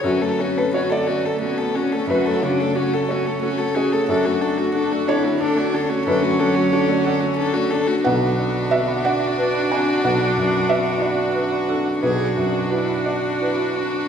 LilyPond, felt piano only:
\new Staff \with { instrumentName = "Felt piano" } { \time 6/8 \key fis \minor \tempo 4. = 60 << { a'8. b'16 cis''16 d''16 r4. | b'4. a'4 gis'8 | a'4. cis''4. | b'4. a'4 r8 |
fis''4 e''8 fis''4 gis''8 | fis''4 e''8 d''4 a'8 | b'4. d''4. | } \\ { fis,8 cis'8 fis'8 cis''8 a'8 cis'8 | fis,8 cis8 fis'8 cis''8 a'8 cis'8 | fis,8 d'8 fis'8 d'8 a'8 d8 | fis,8 fis8 fis'8 fis''8 a'8 d8 |
b,,8 d'8 fis'8 d''8 b'8 d'8 | b,,8 fis,8 fis'4 b'8 d'8 | b,,8 fis,8 fis'4 b'8 d'8 | } >> }